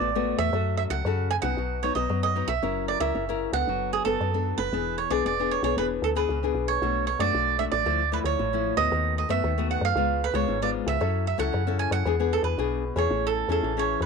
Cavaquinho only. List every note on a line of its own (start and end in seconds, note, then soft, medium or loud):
0.00 0.40 D5 medium
0.39 0.76 E5 loud
0.77 0.82 E5 medium
0.90 1.28 F#5 loud
1.31 1.36 G#5 medium
1.42 1.84 F#5 medium
1.83 1.95 C#5 medium
1.95 2.20 D#5 medium
2.23 2.47 D#5 medium
2.48 2.85 E5 medium
2.88 3.00 D5 medium
3.00 3.53 E5 medium
3.53 3.90 F#5 medium
3.93 4.04 G#4 medium
4.05 4.54 A4 medium
4.58 4.97 B4 medium
4.98 5.10 C#5 medium
5.10 5.23 D5 medium
5.26 5.50 D5 medium
5.51 5.63 C#5 medium
5.64 5.77 C#5 medium
5.78 5.85 B4 medium
6.04 6.09 A4 medium
6.17 6.65 B4 medium
6.68 7.05 C#5 medium
7.07 7.21 C#5 medium
7.20 7.57 D5 medium
7.59 7.64 E5 medium
7.72 8.09 D5 medium
8.13 8.18 B4 medium
8.25 8.80 C#5 medium
8.77 9.14 D#5 medium
9.18 9.30 D#5 medium
9.30 9.67 E5 medium
9.71 9.82 F#5 medium
9.85 10.24 F5 medium
10.24 10.34 B4 medium
10.35 10.59 C#5 medium
10.62 10.69 D5 medium
10.88 11.26 E5 medium
11.27 11.39 E5 medium
11.39 11.79 F#5 medium
11.79 11.92 G#5 medium
11.92 12.33 F#5 medium
12.33 12.44 A4 medium
12.44 12.93 B4 medium
12.98 13.25 C#5 medium
13.27 13.50 A4 medium
13.52 13.78 A4 medium
13.79 14.02 C#5 medium
14.02 14.06 B4 medium